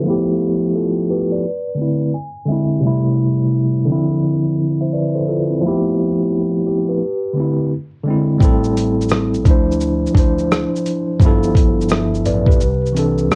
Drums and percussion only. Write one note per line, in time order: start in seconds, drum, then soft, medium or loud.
8.40 kick loud
8.40 shaker medium
8.64 shaker soft
8.77 closed hi-hat medium
8.77 shaker soft
9.01 shaker soft
9.09 cross-stick loud
9.09 shaker medium
9.34 shaker soft
9.45 kick loud
9.45 closed hi-hat medium
9.45 shaker soft
9.72 shaker soft
9.81 shaker medium
10.06 shaker soft
10.15 kick medium
10.15 closed hi-hat medium
10.15 shaker soft
10.39 shaker soft
10.52 cross-stick loud
10.52 shaker medium
10.76 shaker medium
10.86 closed hi-hat medium
10.86 shaker soft
11.20 kick loud
11.20 shaker medium
11.43 shaker soft
11.55 kick medium
11.55 closed hi-hat medium
11.55 shaker soft
11.81 shaker medium
11.89 cross-stick loud
11.89 shaker medium
12.15 shaker soft
12.26 closed hi-hat medium
12.26 shaker soft
12.46 kick medium
12.51 shaker soft
12.61 shaker medium
12.86 shaker soft
12.97 closed hi-hat medium
12.97 shaker soft
13.18 shaker soft
13.32 cross-stick loud
13.32 shaker medium